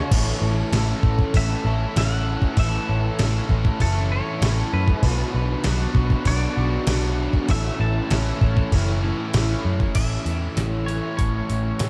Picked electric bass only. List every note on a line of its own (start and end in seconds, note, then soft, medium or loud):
0.11 0.31 A1 loud
0.42 0.61 A1 medium
0.72 0.92 A1 medium
1.03 1.23 A1 medium
1.34 1.54 A1 medium
1.65 1.84 A1 medium
1.96 2.35 A1 medium
2.57 2.77 A1 loud
2.89 3.09 A1 medium
3.20 3.39 A1 loud
3.50 3.69 A1 loud
3.80 4.20 F#1 loud
4.42 4.61 A1 loud
4.73 4.93 F#2 loud
5.03 5.22 B1 loud
5.34 5.54 B1 medium
5.66 5.85 B1 medium
5.95 6.15 B1 loud
6.25 6.45 B1 loud
6.57 6.77 B1 medium
6.87 7.26 B1 medium
7.49 7.69 A1 loud
7.80 7.99 A1 medium
8.11 8.31 A1 loud
8.41 8.61 A1 loud
8.72 9.11 F#1 medium
9.34 9.54 A1 medium
9.65 9.84 F#2 medium
9.95 10.17 A1 medium
10.26 10.47 E2 medium
10.57 10.99 A1 medium
11.19 11.40 A1 medium
11.50 11.71 A1 medium
11.80 11.90 A2 medium